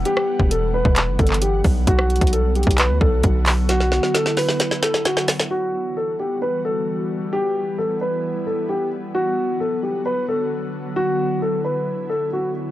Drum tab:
HH |x-----------------------x-----------------------x-----------x---x---x---x-----------o-----------|x-----------x--x--x--x--x-----------x---x---x---x-----------------------x-----------o-----------|x-----------------------x-----------o-----------x-----------x-----------x-----------o-----------|------------------------------------------------------------------------------------------------|
CP |------------------------------------------------x-----------------x-----------------------------|------------------------------------------------x-----------------------------------x-----------|------------------------------------------------------------------------------------------------|------------------------------------------------------------------------------------------------|
SD |------r-----------------------------------------------------------------------------------------|------r-----------------------------------------------------------------------------------------|o-----o-----o-----o-----o-----o-----o-----o-----o-----o-----o-----o-----o-----o-----o-----o-----|------------------------------------------------------------------------------------------------|
BD |------------------o-----------------------o-----------------o-----------------------o-----------|o-----------------o-----------------------o-----------------o-----------o-----------------------|------------------------------------------------------------------------------------------------|------------------------------------------------------------------------------------------------|

HH |------------------------------------------------------------------------------------------------|------------------------------------------------------------------------------------------------|------------------------------------------------------------------------------------------------|
CP |------------------------------------------------------------------------------------------------|------------------------------------------------------------------------------------------------|------------------------------------------------------------------------------------------------|
SD |------------------------------------------------------------------------------------------------|------------------------------------------------------------------------------------------------|------------------------------------------------------------------------------------------------|
BD |------------------------------------------------------------------------------------------------|------------------------------------------------------------------------------------------------|------------------------------------------------------------------------------------------------|